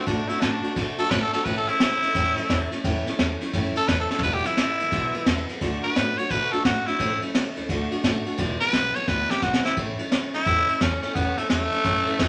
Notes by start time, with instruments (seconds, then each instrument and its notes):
0.06 upright bass A2, steel-string acoustic guitar D3 A3 D4 F#4, tenor saxophone D4, kick, ride
0.28 steel-string acoustic guitar A3 D4 F#4, tenor saxophone E4, muted upright bass stroke, snare, ride
0.40 upright bass A2, steel-string acoustic guitar D3 A3 D4 F#4, tenor saxophone D4, snare, ride
0.62 steel-string acoustic guitar A3 D4 F#4, muted upright bass stroke, ride
0.76 upright bass B2, steel-string acoustic guitar D3 A3 D4 F#4, kick, snare, ride
0.98 steel-string acoustic guitar A3 D4 F#4, tenor saxophone A4, muted upright bass stroke, ride
1.10 upright bass A2, steel-string acoustic guitar D3 A3 D4 F#4, tenor saxophone B4, kick, snare, ride
1.22 tenor saxophone A4
1.33 steel-string acoustic guitar A3 D4 F#4, tenor saxophone A4, muted upright bass stroke, snare, ride
1.45 upright bass A1, steel-string acoustic guitar A2 E3 A3 C#4 E4, tenor saxophone B4, kick, ride
1.57 tenor saxophone A4
1.68 steel-string acoustic guitar A3 C#4 E4, tenor saxophone E4, muted upright bass stroke, ride
1.80 upright bass C#2, steel-string acoustic guitar E3 A3 C#4 E4, snare, ride
2.02 upright bass D2, steel-string acoustic guitar A3 C#4 E4, snare, ride
2.15 upright bass E2, steel-string acoustic guitar A2 E3 A3 C#4 E4, kick, ride
2.37 steel-string acoustic guitar A3 C#4 E4, muted upright bass stroke, ride
2.49 upright bass E2, steel-string acoustic guitar E3 A3 C#4 E4, kick, snare, ride
2.72 steel-string acoustic guitar A3 C#4 E4, muted upright bass stroke, snare, ride
2.84 upright bass E2, steel-string acoustic guitar A2 E3 A3 C#4 E4, kick, ride
3.06 steel-string acoustic guitar A3 C#4 E4, snare, ride
3.19 upright bass E2, steel-string acoustic guitar E3 A3 C#4 E4, snare, ride
3.41 steel-string acoustic guitar A3 C#4 E4, muted upright bass stroke, snare, ride
3.53 upright bass F#2, steel-string acoustic guitar A2 E3 A3 C#4 E4, kick, snare, ride
3.75 steel-string acoustic guitar A3 C#4 E4, tenor saxophone A4, muted upright bass stroke, ride
3.88 upright bass E2, steel-string acoustic guitar E3 A3 C#4 E4, tenor saxophone B4, kick, snare, ride
4.00 tenor saxophone A4
4.10 steel-string acoustic guitar A3 C#4 E4, tenor saxophone A4, muted upright bass stroke, snare
4.19 floor tom
4.23 upright bass E1, steel-string acoustic guitar E2 B2 E3 G#3 B3 E4, tenor saxophone B4, kick, ride
4.34 tenor saxophone G4
4.44 steel-string acoustic guitar E3 G#3 B3 E4, tenor saxophone E4, snare, ride
4.57 upright bass G#1, steel-string acoustic guitar E3 G#3 B3 E4, snare, ride
4.79 upright bass A1, steel-string acoustic guitar E3 G#3 B3 E4, ride
4.91 upright bass B1, steel-string acoustic guitar E2 B2 E3 G#3 B3 E4, kick, ride
5.14 steel-string acoustic guitar E3 G#3 B3 E4, muted upright bass stroke, ride
5.26 upright bass E2, steel-string acoustic guitar E3 G#3 B3 E4, kick, snare, ride
5.48 steel-string acoustic guitar E3 G#3 B3 E4, muted upright bass stroke, snare, ride
5.61 upright bass D2, steel-string acoustic guitar D3 A3 D4 F#4, kick, ride
5.83 steel-string acoustic guitar A3 D4 F#4, tenor saxophone B4, ride
5.96 upright bass A2, steel-string acoustic guitar D3 A3 D4 F#4, snare, ride
6.18 steel-string acoustic guitar A3 D4 F#4, tenor saxophone C#5, muted upright bass stroke, ride
6.30 upright bass B2, steel-string acoustic guitar D3 A3 D4 F#4, tenor saxophone B4, kick, ride
6.52 steel-string acoustic guitar A3 D4 F#4, tenor saxophone A4, muted upright bass stroke, ride
6.64 upright bass A2, steel-string acoustic guitar D3 A3 D4 F#4, tenor saxophone F#4, kick, snare, ride
6.86 steel-string acoustic guitar A3 D4 F#4, tenor saxophone E4, muted upright bass stroke, snare, ride
6.99 upright bass A1, steel-string acoustic guitar A2 E3 A3 C#4 E4, kick, ride
7.22 steel-string acoustic guitar A3 C#4 E4, muted upright bass stroke, ride
7.34 upright bass C#2, steel-string acoustic guitar E3 A3 C#4 E4, snare, ride
7.56 upright bass D2, steel-string acoustic guitar A3 C#4 E4, ride
7.69 upright bass D2, steel-string acoustic guitar D3 A3 D4 F#4, kick, ride
7.91 steel-string acoustic guitar A3 D4 F#4, ride
8.03 upright bass A2, steel-string acoustic guitar D3 A3 D4 F#4, kick, snare, ride
8.25 steel-string acoustic guitar A3 D4 F#4, muted upright bass stroke, ride
8.38 upright bass E1, steel-string acoustic guitar E2 B2 E3 G#3 B3 E4, kick, ride
8.60 steel-string acoustic guitar E3 G#3 B3 E4, tenor saxophone B4, snare, ride
8.72 upright bass B1, steel-string acoustic guitar E3 G#3 B3 E4, snare, ride
8.94 steel-string acoustic guitar E3 G#3 B3 E4, tenor saxophone C#5, snare, ride
9.08 upright bass D2, steel-string acoustic guitar E2 B2 E3 G#3 B3 E4, tenor saxophone B4, kick, snare
9.29 steel-string acoustic guitar E3 G#3 B3 E4, tenor saxophone G4, muted upright bass stroke, snare
9.42 upright bass B1, steel-string acoustic guitar E3 G#3 B3 E4, tenor saxophone F#4, kick, snare
9.54 snare
9.64 steel-string acoustic guitar E3 G#3 B3 E4, tenor saxophone E4, snare
9.77 upright bass A1, steel-string acoustic guitar A2 E3 A3 C#4 E4, kick, ride
9.99 steel-string acoustic guitar A3 C#4 E4, muted upright bass stroke, ride
10.11 upright bass C#2, steel-string acoustic guitar E3 A3 C#4 E4, snare, ride
10.33 upright bass D2, steel-string acoustic guitar A3 C#4 E4, tenor saxophone E4, snare, ride
10.45 upright bass E2, steel-string acoustic guitar A2 E3 A3 C#4 E4, kick, snare, ride
10.68 steel-string acoustic guitar A3 C#4 E4, muted upright bass stroke, ride
10.81 upright bass E2, steel-string acoustic guitar E3 A3 C#4 E4, tenor saxophone C#4, kick, snare, ride
11.02 steel-string acoustic guitar A3 C#4 E4, tenor saxophone C#4, muted upright bass stroke, snare, ride
11.15 upright bass E2, steel-string acoustic guitar A2 E3 A3 C#4 E4, tenor saxophone B3, kick, ride
11.38 tenor saxophone A3, steel-string acoustic guitar A3 C#4 E4, muted upright bass stroke, snare, ride
11.50 upright bass E2, steel-string acoustic guitar E3 A3 C#4 E4, tenor saxophone A3, snare, ride
11.72 steel-string acoustic guitar A3 C#4 E4, muted upright bass stroke, ride
11.84 upright bass F#2, steel-string acoustic guitar A2 E3 A3 C#4 E4, kick, snare, ride
12.06 steel-string acoustic guitar A3 C#4 E4, muted upright bass stroke, ride
12.19 upright bass E2, steel-string acoustic guitar E3 A3 C#4 E4, kick, snare, ride